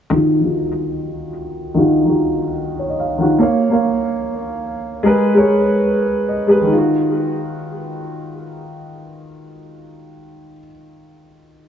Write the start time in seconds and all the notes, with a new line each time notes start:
0.10 D#3 D#4 F4
0.14 F#4
0.41 D#3 D#4 F4
0.45 F#4
1.74 D#3 D#4 F4
1.79 F#4
2.05 D#3 D#4 F4
2.09 F#4
2.79 C#5
2.90 D#5
3.00 F5
3.18 D#3 D#4 F4 F#5
3.22 F#4
3.39 A#3 A#4 C#5
3.43 F5
3.69 A#3 A#4 C#5
3.74 F5
5.03 G#3 G#4 A#4
5.07 B4
5.34 G#3 G#4 A#4
5.38 C#5
6.29 D#5
6.47 G#3 G#4 A#4
6.51 B4
6.61 D#3
6.67 D#4
6.72 F4
6.78 F#4